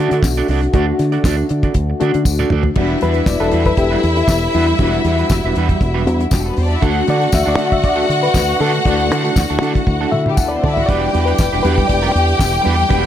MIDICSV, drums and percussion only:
0, 0, Header, 1, 2, 480
1, 0, Start_track
1, 0, Key_signature, 1, "minor"
1, 0, Tempo, 507185
1, 695, Time_signature, 4, 2, 24, 8
1, 12361, End_track
2, 0, Start_track
2, 0, Title_t, "Drums"
2, 105, Note_on_c, 9, 42, 53
2, 200, Note_off_c, 9, 42, 0
2, 214, Note_on_c, 9, 36, 123
2, 225, Note_on_c, 9, 38, 107
2, 226, Note_on_c, 9, 54, 108
2, 234, Note_on_c, 9, 39, 80
2, 309, Note_off_c, 9, 36, 0
2, 319, Note_off_c, 9, 38, 0
2, 320, Note_off_c, 9, 54, 0
2, 328, Note_off_c, 9, 39, 0
2, 336, Note_on_c, 9, 42, 41
2, 430, Note_off_c, 9, 42, 0
2, 456, Note_on_c, 9, 46, 67
2, 550, Note_off_c, 9, 46, 0
2, 591, Note_on_c, 9, 42, 43
2, 685, Note_off_c, 9, 42, 0
2, 694, Note_on_c, 9, 42, 76
2, 697, Note_on_c, 9, 36, 110
2, 788, Note_off_c, 9, 42, 0
2, 792, Note_off_c, 9, 36, 0
2, 938, Note_on_c, 9, 42, 65
2, 950, Note_on_c, 9, 38, 36
2, 1032, Note_off_c, 9, 42, 0
2, 1044, Note_off_c, 9, 38, 0
2, 1062, Note_on_c, 9, 42, 42
2, 1157, Note_off_c, 9, 42, 0
2, 1174, Note_on_c, 9, 36, 114
2, 1181, Note_on_c, 9, 54, 94
2, 1183, Note_on_c, 9, 38, 102
2, 1192, Note_on_c, 9, 39, 83
2, 1268, Note_off_c, 9, 36, 0
2, 1276, Note_off_c, 9, 54, 0
2, 1278, Note_off_c, 9, 38, 0
2, 1287, Note_off_c, 9, 39, 0
2, 1301, Note_on_c, 9, 42, 32
2, 1395, Note_off_c, 9, 42, 0
2, 1412, Note_on_c, 9, 42, 78
2, 1506, Note_off_c, 9, 42, 0
2, 1542, Note_on_c, 9, 42, 41
2, 1544, Note_on_c, 9, 36, 88
2, 1636, Note_off_c, 9, 42, 0
2, 1639, Note_off_c, 9, 36, 0
2, 1649, Note_on_c, 9, 42, 86
2, 1654, Note_on_c, 9, 36, 87
2, 1744, Note_off_c, 9, 42, 0
2, 1749, Note_off_c, 9, 36, 0
2, 1898, Note_on_c, 9, 42, 80
2, 1992, Note_off_c, 9, 42, 0
2, 2026, Note_on_c, 9, 42, 55
2, 2120, Note_off_c, 9, 42, 0
2, 2132, Note_on_c, 9, 36, 105
2, 2133, Note_on_c, 9, 48, 55
2, 2135, Note_on_c, 9, 54, 112
2, 2227, Note_off_c, 9, 36, 0
2, 2228, Note_off_c, 9, 48, 0
2, 2230, Note_off_c, 9, 54, 0
2, 2260, Note_on_c, 9, 47, 64
2, 2355, Note_off_c, 9, 47, 0
2, 2367, Note_on_c, 9, 45, 99
2, 2462, Note_off_c, 9, 45, 0
2, 2492, Note_on_c, 9, 43, 92
2, 2586, Note_off_c, 9, 43, 0
2, 2607, Note_on_c, 9, 49, 90
2, 2613, Note_on_c, 9, 36, 119
2, 2702, Note_off_c, 9, 49, 0
2, 2708, Note_off_c, 9, 36, 0
2, 2847, Note_on_c, 9, 42, 68
2, 2859, Note_on_c, 9, 38, 37
2, 2942, Note_off_c, 9, 42, 0
2, 2953, Note_off_c, 9, 38, 0
2, 2971, Note_on_c, 9, 42, 39
2, 3065, Note_off_c, 9, 42, 0
2, 3087, Note_on_c, 9, 38, 106
2, 3088, Note_on_c, 9, 36, 109
2, 3096, Note_on_c, 9, 39, 81
2, 3096, Note_on_c, 9, 54, 92
2, 3182, Note_off_c, 9, 38, 0
2, 3183, Note_off_c, 9, 36, 0
2, 3191, Note_off_c, 9, 39, 0
2, 3191, Note_off_c, 9, 54, 0
2, 3217, Note_on_c, 9, 42, 32
2, 3312, Note_off_c, 9, 42, 0
2, 3325, Note_on_c, 9, 42, 76
2, 3420, Note_off_c, 9, 42, 0
2, 3457, Note_on_c, 9, 42, 44
2, 3460, Note_on_c, 9, 36, 82
2, 3552, Note_off_c, 9, 42, 0
2, 3555, Note_off_c, 9, 36, 0
2, 3568, Note_on_c, 9, 42, 74
2, 3572, Note_on_c, 9, 36, 93
2, 3663, Note_off_c, 9, 42, 0
2, 3667, Note_off_c, 9, 36, 0
2, 3816, Note_on_c, 9, 42, 71
2, 3911, Note_off_c, 9, 42, 0
2, 3943, Note_on_c, 9, 42, 46
2, 4038, Note_off_c, 9, 42, 0
2, 4048, Note_on_c, 9, 36, 109
2, 4055, Note_on_c, 9, 54, 103
2, 4056, Note_on_c, 9, 38, 104
2, 4065, Note_on_c, 9, 39, 91
2, 4143, Note_off_c, 9, 36, 0
2, 4150, Note_off_c, 9, 54, 0
2, 4151, Note_off_c, 9, 38, 0
2, 4160, Note_off_c, 9, 39, 0
2, 4167, Note_on_c, 9, 42, 36
2, 4261, Note_off_c, 9, 42, 0
2, 4281, Note_on_c, 9, 46, 60
2, 4376, Note_off_c, 9, 46, 0
2, 4422, Note_on_c, 9, 42, 41
2, 4517, Note_off_c, 9, 42, 0
2, 4531, Note_on_c, 9, 42, 70
2, 4534, Note_on_c, 9, 36, 104
2, 4626, Note_off_c, 9, 42, 0
2, 4629, Note_off_c, 9, 36, 0
2, 4663, Note_on_c, 9, 42, 36
2, 4757, Note_off_c, 9, 42, 0
2, 4774, Note_on_c, 9, 42, 59
2, 4786, Note_on_c, 9, 38, 38
2, 4869, Note_off_c, 9, 42, 0
2, 4880, Note_off_c, 9, 38, 0
2, 4902, Note_on_c, 9, 42, 38
2, 4997, Note_off_c, 9, 42, 0
2, 5011, Note_on_c, 9, 54, 99
2, 5015, Note_on_c, 9, 36, 102
2, 5024, Note_on_c, 9, 38, 118
2, 5033, Note_on_c, 9, 39, 94
2, 5106, Note_off_c, 9, 54, 0
2, 5110, Note_off_c, 9, 36, 0
2, 5119, Note_off_c, 9, 38, 0
2, 5128, Note_off_c, 9, 39, 0
2, 5144, Note_on_c, 9, 42, 29
2, 5239, Note_off_c, 9, 42, 0
2, 5256, Note_on_c, 9, 42, 68
2, 5351, Note_off_c, 9, 42, 0
2, 5386, Note_on_c, 9, 36, 77
2, 5388, Note_on_c, 9, 42, 43
2, 5481, Note_off_c, 9, 36, 0
2, 5483, Note_off_c, 9, 42, 0
2, 5497, Note_on_c, 9, 36, 106
2, 5499, Note_on_c, 9, 42, 72
2, 5591, Note_off_c, 9, 36, 0
2, 5593, Note_off_c, 9, 42, 0
2, 5745, Note_on_c, 9, 42, 74
2, 5840, Note_off_c, 9, 42, 0
2, 5872, Note_on_c, 9, 42, 51
2, 5967, Note_off_c, 9, 42, 0
2, 5972, Note_on_c, 9, 54, 104
2, 5976, Note_on_c, 9, 36, 115
2, 5990, Note_on_c, 9, 38, 103
2, 5999, Note_on_c, 9, 39, 82
2, 6067, Note_off_c, 9, 54, 0
2, 6071, Note_off_c, 9, 36, 0
2, 6085, Note_off_c, 9, 38, 0
2, 6094, Note_off_c, 9, 39, 0
2, 6214, Note_on_c, 9, 46, 66
2, 6308, Note_off_c, 9, 46, 0
2, 6355, Note_on_c, 9, 42, 40
2, 6449, Note_off_c, 9, 42, 0
2, 6458, Note_on_c, 9, 42, 77
2, 6459, Note_on_c, 9, 36, 115
2, 6552, Note_off_c, 9, 42, 0
2, 6554, Note_off_c, 9, 36, 0
2, 6695, Note_on_c, 9, 42, 70
2, 6707, Note_on_c, 9, 38, 39
2, 6790, Note_off_c, 9, 42, 0
2, 6802, Note_off_c, 9, 38, 0
2, 6824, Note_on_c, 9, 42, 38
2, 6919, Note_off_c, 9, 42, 0
2, 6931, Note_on_c, 9, 54, 109
2, 6935, Note_on_c, 9, 36, 110
2, 6945, Note_on_c, 9, 38, 107
2, 6954, Note_on_c, 9, 39, 89
2, 7025, Note_off_c, 9, 54, 0
2, 7030, Note_off_c, 9, 36, 0
2, 7040, Note_off_c, 9, 38, 0
2, 7049, Note_off_c, 9, 39, 0
2, 7177, Note_on_c, 9, 42, 63
2, 7272, Note_off_c, 9, 42, 0
2, 7306, Note_on_c, 9, 36, 90
2, 7307, Note_on_c, 9, 42, 43
2, 7401, Note_off_c, 9, 36, 0
2, 7401, Note_off_c, 9, 42, 0
2, 7414, Note_on_c, 9, 42, 75
2, 7417, Note_on_c, 9, 36, 105
2, 7508, Note_off_c, 9, 42, 0
2, 7512, Note_off_c, 9, 36, 0
2, 7553, Note_on_c, 9, 42, 31
2, 7647, Note_off_c, 9, 42, 0
2, 7667, Note_on_c, 9, 42, 81
2, 7762, Note_off_c, 9, 42, 0
2, 7793, Note_on_c, 9, 42, 50
2, 7888, Note_off_c, 9, 42, 0
2, 7895, Note_on_c, 9, 36, 105
2, 7897, Note_on_c, 9, 54, 105
2, 7910, Note_on_c, 9, 38, 103
2, 7919, Note_on_c, 9, 39, 93
2, 7990, Note_off_c, 9, 36, 0
2, 7992, Note_off_c, 9, 54, 0
2, 8004, Note_off_c, 9, 38, 0
2, 8013, Note_off_c, 9, 39, 0
2, 8025, Note_on_c, 9, 42, 34
2, 8120, Note_off_c, 9, 42, 0
2, 8140, Note_on_c, 9, 46, 60
2, 8235, Note_off_c, 9, 46, 0
2, 8275, Note_on_c, 9, 42, 48
2, 8370, Note_off_c, 9, 42, 0
2, 8380, Note_on_c, 9, 36, 106
2, 8385, Note_on_c, 9, 42, 76
2, 8474, Note_off_c, 9, 36, 0
2, 8479, Note_off_c, 9, 42, 0
2, 8515, Note_on_c, 9, 42, 39
2, 8609, Note_off_c, 9, 42, 0
2, 8626, Note_on_c, 9, 42, 67
2, 8721, Note_off_c, 9, 42, 0
2, 8755, Note_on_c, 9, 42, 41
2, 8849, Note_off_c, 9, 42, 0
2, 8859, Note_on_c, 9, 36, 100
2, 8861, Note_on_c, 9, 54, 114
2, 8873, Note_on_c, 9, 38, 113
2, 8882, Note_on_c, 9, 39, 85
2, 8954, Note_off_c, 9, 36, 0
2, 8956, Note_off_c, 9, 54, 0
2, 8968, Note_off_c, 9, 38, 0
2, 8977, Note_off_c, 9, 39, 0
2, 9111, Note_on_c, 9, 42, 71
2, 9205, Note_off_c, 9, 42, 0
2, 9231, Note_on_c, 9, 36, 88
2, 9237, Note_on_c, 9, 42, 44
2, 9325, Note_off_c, 9, 36, 0
2, 9332, Note_off_c, 9, 42, 0
2, 9340, Note_on_c, 9, 36, 84
2, 9344, Note_on_c, 9, 48, 54
2, 9434, Note_off_c, 9, 36, 0
2, 9439, Note_off_c, 9, 48, 0
2, 9579, Note_on_c, 9, 47, 75
2, 9674, Note_off_c, 9, 47, 0
2, 9709, Note_on_c, 9, 47, 71
2, 9804, Note_off_c, 9, 47, 0
2, 9817, Note_on_c, 9, 54, 105
2, 9818, Note_on_c, 9, 36, 112
2, 9822, Note_on_c, 9, 45, 78
2, 9912, Note_off_c, 9, 36, 0
2, 9912, Note_off_c, 9, 54, 0
2, 9917, Note_off_c, 9, 45, 0
2, 10065, Note_on_c, 9, 43, 99
2, 10160, Note_off_c, 9, 43, 0
2, 10195, Note_on_c, 9, 43, 90
2, 10289, Note_off_c, 9, 43, 0
2, 10303, Note_on_c, 9, 36, 115
2, 10308, Note_on_c, 9, 42, 73
2, 10398, Note_off_c, 9, 36, 0
2, 10403, Note_off_c, 9, 42, 0
2, 10546, Note_on_c, 9, 42, 63
2, 10557, Note_on_c, 9, 38, 35
2, 10640, Note_off_c, 9, 42, 0
2, 10652, Note_off_c, 9, 38, 0
2, 10667, Note_on_c, 9, 42, 40
2, 10762, Note_off_c, 9, 42, 0
2, 10774, Note_on_c, 9, 54, 102
2, 10779, Note_on_c, 9, 36, 117
2, 10789, Note_on_c, 9, 38, 105
2, 10798, Note_on_c, 9, 39, 90
2, 10869, Note_off_c, 9, 54, 0
2, 10873, Note_off_c, 9, 36, 0
2, 10884, Note_off_c, 9, 38, 0
2, 10893, Note_off_c, 9, 39, 0
2, 10913, Note_on_c, 9, 42, 31
2, 11008, Note_off_c, 9, 42, 0
2, 11023, Note_on_c, 9, 42, 75
2, 11117, Note_off_c, 9, 42, 0
2, 11147, Note_on_c, 9, 36, 85
2, 11150, Note_on_c, 9, 42, 39
2, 11242, Note_off_c, 9, 36, 0
2, 11245, Note_off_c, 9, 42, 0
2, 11255, Note_on_c, 9, 42, 79
2, 11257, Note_on_c, 9, 36, 90
2, 11350, Note_off_c, 9, 42, 0
2, 11351, Note_off_c, 9, 36, 0
2, 11506, Note_on_c, 9, 42, 76
2, 11600, Note_off_c, 9, 42, 0
2, 11624, Note_on_c, 9, 42, 52
2, 11719, Note_off_c, 9, 42, 0
2, 11730, Note_on_c, 9, 36, 104
2, 11739, Note_on_c, 9, 54, 107
2, 11742, Note_on_c, 9, 38, 96
2, 11751, Note_on_c, 9, 39, 90
2, 11825, Note_off_c, 9, 36, 0
2, 11834, Note_off_c, 9, 54, 0
2, 11837, Note_off_c, 9, 38, 0
2, 11846, Note_off_c, 9, 39, 0
2, 11852, Note_on_c, 9, 42, 36
2, 11947, Note_off_c, 9, 42, 0
2, 11970, Note_on_c, 9, 46, 63
2, 12064, Note_off_c, 9, 46, 0
2, 12110, Note_on_c, 9, 42, 47
2, 12205, Note_off_c, 9, 42, 0
2, 12214, Note_on_c, 9, 36, 112
2, 12214, Note_on_c, 9, 42, 78
2, 12308, Note_off_c, 9, 36, 0
2, 12309, Note_off_c, 9, 42, 0
2, 12361, End_track
0, 0, End_of_file